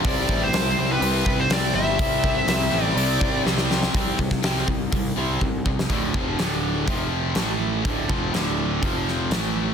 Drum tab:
HH |o---o---o---o---|o---o---o-------|o---o---o-------|o---o---o---o---|
SD |----o-------o---|----o-------oooo|---ooo---------o|----o-------o---|
BD |o-o-------o-----|o-o-------o-----|o-oo--o-o---o-o-|o-o-----o-------|

HH |o---o---o---o---|
SD |----o-----o-o---|
BD |o-o-----o-------|